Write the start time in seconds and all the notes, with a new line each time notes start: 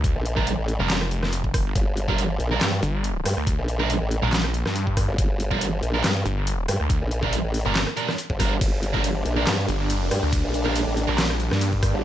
Already playing: D2
0.04 kick, closed hi-hat
0.16 A#1
0.26 closed hi-hat
0.37 G3 D4 A#4, kick, cross-stick
0.47 closed hi-hat
0.58 A1
0.68 closed hi-hat
0.80 F1 G3 D4 A#4
0.90 snare, clap, closed hi-hat
1.01 cross-stick
1.11 closed hi-hat
1.23 cross-stick, snare
1.33 closed hi-hat
1.44 kick
1.54 kick, cross-stick, open hi-hat
1.66 G1
1.75 G1, kick, closed hi-hat
1.97 closed hi-hat
2.08 G3 D4 A#4, kick
2.18 closed hi-hat
2.40 A#1, closed hi-hat
2.51 G3 D4 A#4
2.61 G2, snare, clap, closed hi-hat
2.83 G1, closed hi-hat
3.04 closed hi-hat
3.25 G2, cross-stick, open hi-hat
3.37 D2, cross-stick
3.47 kick, closed hi-hat
3.58 A#1
3.68 closed hi-hat
3.80 G3 D4 A#4, cross-stick
3.90 closed hi-hat
4.01 A1
4.11 closed hi-hat
4.23 A#1 G3 D4 A#4
4.33 snare, clap, closed hi-hat
4.44 cross-stick
4.54 closed hi-hat
4.66 G2, cross-stick, snare
4.76 closed hi-hat
4.87 kick
4.97 kick, cross-stick, open hi-hat
5.08 G1
5.18 G1, kick, closed hi-hat
5.40 closed hi-hat
5.51 G3 D4 A#4, kick
5.61 closed hi-hat
5.83 A#1, closed hi-hat
5.94 G3 D4 A#4
6.04 G2, snare, clap, closed hi-hat
6.26 G1, closed hi-hat
6.47 closed hi-hat
6.68 G2, cross-stick, open hi-hat
6.80 D2, cross-stick
6.90 kick, closed hi-hat
7.01 A#1
7.11 closed hi-hat
7.22 G3 D4 A#4, kick, cross-stick
7.33 closed hi-hat
7.44 A1
7.54 open hi-hat
7.65 G1 G3 D4 A#4
7.76 snare, clap, closed hi-hat
7.87 cross-stick
7.97 G3 D4 A#4, closed hi-hat
8.08 cross-stick, snare
8.18 closed hi-hat
8.30 G1, kick
8.39 G3 D4 A#4, kick, cross-stick, open hi-hat
8.61 G1 G3 A#3 D4, kick, closed hi-hat, ride
8.83 closed hi-hat
8.94 G3 D4 A#4, kick
9.04 closed hi-hat, ride
9.26 A#1, closed hi-hat
9.37 G3 D4 A#4
9.47 G2, snare, clap, closed hi-hat, ride
9.68 G1, closed hi-hat
9.90 closed hi-hat, ride
10.11 G2, cross-stick, open hi-hat
10.23 D2, cross-stick
10.33 kick, closed hi-hat, ride
10.44 A#1
10.54 closed hi-hat
10.65 G3 D4 A#4, cross-stick
10.76 closed hi-hat, ride
10.87 A1
10.97 closed hi-hat
11.08 A#1 G3 D4 A#4
11.18 snare, clap, closed hi-hat, ride
11.30 cross-stick
11.40 closed hi-hat
11.51 G2, cross-stick, snare
11.61 closed hi-hat, ride
11.73 kick
11.83 kick, cross-stick, open hi-hat
11.94 G1